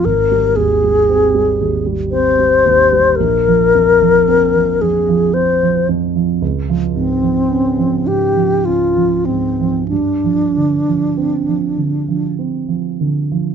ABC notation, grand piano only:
X:1
M:3/4
L:1/16
Q:1/4=55
K:Gphr
V:1 name="Grand piano" clef=bass
A,,, G, E,, G, C G, E,, G, C G, E,, G, | B,,, F, F,, F, C F, F,, F, C F, F,, F, | _D,, F, A,, F, _D F, A,, F, D F, A,, F, | G,, F, D, F, C F, D, F, C F, D, F, |]